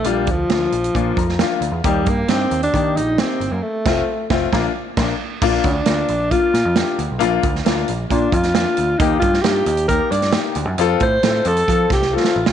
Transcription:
<<
  \new Staff \with { instrumentName = "Alto saxophone" } { \time 4/4 \key bes \major \tempo 4 = 134 g8 f2. r8 | g8 bes8 c'8. d'8. ees'8 c'8. bes16 | a4. r2 r8 | r8 d'4. f'4. r8 |
r2 d'8 f'4. | ees'8 f'8 g'4 bes'8 d''8 r4 | r8 c''4 a'4 g'8 f'4 | }
  \new Staff \with { instrumentName = "Grand piano" } { \time 4/4 \key bes \major << { r2 r8 bes''8 f''4 | r1 | r1 | r1 |
r1 | r1 | r1 | } \\ { <bes d' f'>8 r8 <bes d' f'>8 r8 <bes d' f'>8 r8 <bes d' f'>8 r8 | <bes ees' g'>8 r8 <bes ees' g'>8 r8 <bes ees' g'>8 r8 <bes ees' g'>8 r8 | r8 <a c' f'>8 r8 <a c' f'>8 <bes d' f'>8 r8 <bes d'>8 r8 | <bes d' f'>8 r8 <bes d' f'>8 r8 <bes d' f'>8 r8 <bes d' g'>8 r8 |
<bes d' f'>8 r8 <bes d' f'>8 r8 <bes d' f'>8 r8 <bes d' f'>8 r8 | <bes ees' g'>8 r8 <bes ees' f'>8 r8 <bes ees' g'>8 r8 <bes ees' g'>8 r8 | <c' f' a'>8 r8 <c' f' a'>8 r8 <c' f' a'>8 r8 <c' f' a'>8 r8 | } >> }
  \new Staff \with { instrumentName = "Picked electric bass" } { \clef bass \time 4/4 \key bes \major bes,,8 d,8 d,8 bes,,8 bes,8 f,8. r16 d,16 e,16 | ees,8 g,8 g,8 ees,8 ees8 bes,,8. r16 g,,16 ges,16 | r8 f,,8 r8 f,,8 bes,,8 r8 bes,,8 r8 | bes,,8 d,8 d,8 bes,,8. r16 bes,16 f,8 r16 d,16 ces,16 |
bes,,8 d,8 d,8 bes,,8 bes,8 f,4 d,8 | ees,8 g,8 g,8 ees,4 g,8. r16 d,16 ges,16 | f,8 a,8 a,8 f,8 f8 c,8. r16 a,,16 ces,16 | }
  \new DrumStaff \with { instrumentName = "Drums" } \drummode { \time 4/4 hh8 <hh bd>8 <hh sn>8 hh16 hh16 <hh bd>8 <hh bd>16 sn16 <hh sn>8 hh8 | <hh bd>8 <hh bd>8 <hh sn>8 hh16 hh16 <hh bd>8 hh8 <hh sn>8 hh8 | r8 <cymc bd sn>8 r8 <bd sn>8 <bd sn>4 <cymc bd sn>4 | <cymc bd>8 <hh bd>8 <hh sn>8 hh8 <hh bd>8 <hh sn>8 <hh sn>8 hh8 |
hh8 <hh bd>16 sn16 <hh sn>8 hh8 <hh bd>8 <hh bd>16 <hh sn>16 <hh sn>8 hh8 | <hh bd>8 <hh bd>16 sn16 <hh sn>8 hh16 hh16 <hh bd>8 hh16 <hh sn>16 <hh sn>8 hh8 | hh8 <hh bd>8 <hh sn>8 hh16 hh16 <hh bd>8 <hh bd sn>16 sn16 r16 sn8 sn16 | }
>>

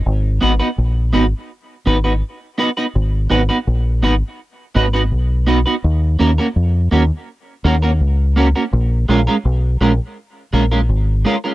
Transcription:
<<
  \new Staff \with { instrumentName = "Clean electric guitar" } { \time 4/4 \key gis \dorian \tempo 4 = 83 r8 <b dis' fis' b'>16 <b dis' fis' b'>16 r8 <b dis' fis' b'>16 r8. <b dis' fis' b'>16 <b dis' fis' b'>16 r8 <b dis' fis' b'>16 <b dis' fis' b'>16 | r8 <b dis' fis' b'>16 <b dis' fis' b'>16 r8 <b dis' fis' b'>16 r8. <b dis' fis' b'>16 <b dis' fis' b'>16 r8 <b dis' fis' b'>16 <b dis' fis' b'>16 | r8 <ais cis' fis' ais'>16 <ais cis' fis' ais'>16 r8 <ais cis' fis' ais'>16 r8. <ais cis' fis' ais'>16 <ais cis' fis' ais'>16 r8 <ais cis' fis' ais'>16 <ais cis' fis' ais'>16 | r8 <gis cis' eis' ais'>16 <gis cis' eis' ais'>16 r8 <gis cis' eis' ais'>16 r8. <gis cis' eis' ais'>16 <gis cis' eis' ais'>16 r8 <gis cis' eis' ais'>16 <gis cis' eis' ais'>16 | }
  \new Staff \with { instrumentName = "Fingered electric bass" } { \clef bass \time 4/4 \key gis \dorian gis,,8 gis,,16 r16 ais,,8 gis,,16 r8. gis,,8 r4 | gis,,8 gis,,16 r16 ais,,8 gis,,16 r8. gis,,8 b,,8. r16 | dis,8 dis,16 r16 eis,8 dis,16 r8. dis,8 cis,8. r16 | ais,,8 ais,,16 r16 b,,8 ais,,16 r8. ais,,8 gis,,8 r8 | }
>>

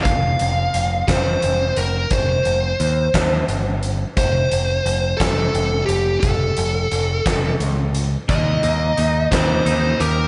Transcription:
<<
  \new Staff \with { instrumentName = "Lead electric guitar" } { \time 6/8 \key f \mixolydian \tempo 4. = 58 f''4. c''4 bes'8 | c''2 r4 | c''4. a'4 g'8 | a'2 r4 |
ees''4. c''4 bes'8 | }
  \new Staff \with { instrumentName = "Clean electric guitar" } { \time 6/8 \key f \mixolydian r2. | r2. | r2. | r2. |
ees8 bes8 ees'8 g8 ees'8 g'8 | }
  \new Staff \with { instrumentName = "Overdriven electric guitar" } { \time 6/8 \key f \mixolydian r2. | r2. | r2. | r2. |
<ees bes ees'>8 <ees bes>8 <ees bes>8 <ees bes ees'>4 <ees bes>8 | }
  \new Staff \with { instrumentName = "Picked electric bass" } { \clef bass \time 6/8 \key f \mixolydian f,,8 f,,8 f,,8 f,,8 f,,8 f,,8 | f,,8 f,,8 ees,8 ees,8 g,,4 | f,,8 f,,8 f,,8 f,,8 f,,8 f,,8 | f,,8 f,,8 f,,8 f,,8 cis,4 |
ees,8 ees,8 ees,8 ees,8 ees,8 ees,8 | }
  \new DrumStaff \with { instrumentName = "Drums" } \drummode { \time 6/8 <hh bd>8 hh8 hh8 <hh bd sn>8 hh8 hh8 | <hh bd>8 hh8 hh8 <hh bd sn>8 hh8 hh8 | <hh bd>8 hh8 hh8 <hh bd sn>8 hh8 hh8 | <hh bd>8 hh8 hh8 <hh bd sn>8 hh8 hh8 |
<hh bd>8 hh8 hh8 <hh bd sn>8 hh8 hh8 | }
>>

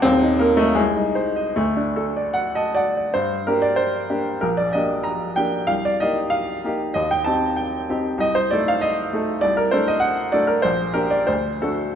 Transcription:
\new Staff \with { instrumentName = "Upright piano" } { \time 2/4 \key g \minor \tempo 4 = 95 << { c'8 bes16 a16 aes4 | a4 fis''16 ees''16 d''8 | c''8 bes'16 d''16 c''4 | bes'16 d''16 ees''8 bes''8 g''8 |
f''16 d''16 ees''8 f''4 | ees''16 g''16 a''8 g''8 r8 | ees''16 c''16 d''16 f''16 ees''4 | d''16 bes'16 c''16 ees''16 fis''8 d''16 bes'16 |
c''8 bes'16 d''16 c''8 a'8 | } \\ { <ees,, ees,>16 ees'16 bes'16 ees''16 c,16 ees'16 c''16 ees''16 | d,16 d'16 a'16 d''8 a''16 fis''16 d''16 | g,8 <bes d' g'>4 <bes d' g'>8 | bes,,8 <bes d' g'>4 <bes d' g'>8 |
c,8 <bes ees' g'>4 <bes ees' g'>8 | ees,8 <c' ees' g'>4 <c' ees' g'>8 | c,8 <a ees' a'>4 <a ees' a'>8 | c,8 <a d' a'>4 <a d' a'>8 |
bes,,8 <bes d' g'>8 d,8 <a d' fis'>8 | } >> }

